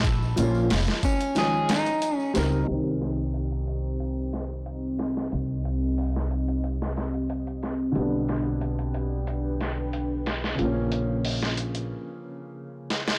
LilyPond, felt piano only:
\new Staff \with { instrumentName = "Felt piano" } { \time 4/4 \key bes \dorian \tempo 4 = 91 r8 <f bes des' f'>8 r4 <ees f aes des'>8 r4 <g c' ees' bes'>8 | <ees g c' ees'>1~ | <ees g c' ees'>1 | <d g b d'>1 |
<des f bes des'>1 | }